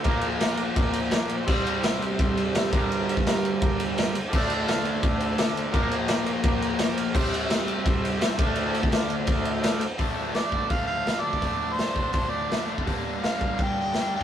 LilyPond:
<<
  \new Staff \with { instrumentName = "Harmonica" } { \time 4/4 \key d \minor \tempo 4 = 169 r1 | r1 | r1 | r1 |
r1 | r1 | r1 | r4 d''4 f''8 f''4 d''8~ |
d''4 c''4 c''8 d''4 r8 | r4 f''4 g''8 g''4 g''8 | }
  \new Staff \with { instrumentName = "Transistor combo organ" } { \time 4/4 \key d \minor <f' bes' d''>8 r8 <f' bes' d''>8 r8 <f' bes' d''>8 r8 <f' bes' d''>8 r8 | <g' c'' e''>8 r8 <g' c'' e''>8 r8 <g' c'' e''>8 r8 <g' c'' e''>8 <g' bes' d''>8~ | <g' bes' d''>8 r8 <g' bes' f''>8 r8 <g' bes' d''>8 r8 <g' bes' d''>8 r8 | <f' a' d''>8 r8 <f' a' f''>8 r8 <f' a' d''>8 r8 <f' a' d''>8 r8 |
<f' bes' d''>8 r8 <f' bes' d''>8 r8 <f' bes' d''>8 bes''8 <f' bes' d'' g''>8 f''8 | <g' c'' e''>8 r8 <g' c'' e''>8 r8 <g' c'' e''>8 r8 <g' c'' e''>8 <a' d'' f''>8~ | <a' d'' f''>8 r8 <a' d'' f''>8 r8 <a' d'' f''>8 r8 <a' d'' f''>8 r8 | r1 |
r1 | r1 | }
  \new Staff \with { instrumentName = "Overdriven electric guitar" } { \clef bass \time 4/4 \key d \minor <bes, f bes>1 | <c g c'>2.~ <c g c'>8 <g, d g>8~ | <g, d g>2.~ <g, d g>8 r8 | <d a d'>1 |
<bes, f bes>1 | <c g c'>2.~ <c g c'>8 <d a d'>8~ | <d a d'>2.~ <d a d'>8 r8 | <d f a d'>4 <d f a d'>8 <f a d'>8 <d f a d'>4 <d f a d'>8 <f a d'>8 |
<d f a d'>4 <d f a d'>8 <f a d'>8 <d f a d'>4 <d f a d'>8 <f a d'>8 | <g, d g bes d'>4 <g, d g bes d'>8 <g bes d'>8 <d g bes d'>4 <d g bes d'>8 <g bes d'>8 | }
  \new DrumStaff \with { instrumentName = "Drums" } \drummode { \time 4/4 <bd cymr>8 cymr8 <cymr sn>8 cymr8 <bd cymr>8 cymr8 <cymr sn>8 cymr8 | <cymc bd>8 cymr8 <cymr sn>8 cymr8 <bd cymr>8 cymr8 <cymr sn>8 <bd cymr>8 | cymr8 cymr16 bd16 <cymr sn>8 cymr8 <bd cymr>8 cymr8 <cymr sn>8 cymr8 | <cymc bd>8 cymr8 <cymr sn>8 cymr8 <bd cymr>8 cymr8 <cymr sn>8 cymr8 |
<bd cymr>8 cymr8 <cymr sn>8 cymr8 <bd cymr>8 cymr8 <cymr sn>8 cymr8 | <cymc bd>8 cymr8 <cymr sn>8 cymr8 <bd cymr>8 cymr8 <cymr sn>8 <bd cymr>8 | cymr8 cymr16 bd16 <cymr sn>8 cymr8 <bd cymr>8 cymr8 <cymr sn>8 cymr8 | <hho bd>4 <hho sn>8 bd8 <hho bd>4 <hho sn>8. bd16 |
<hho bd>4 <hho sn>8 bd8 <hho bd>4 <hho sn>8. bd16 | <hho bd>4 <hho sn>8 bd8 <hho bd>4 <hho sn>4 | }
>>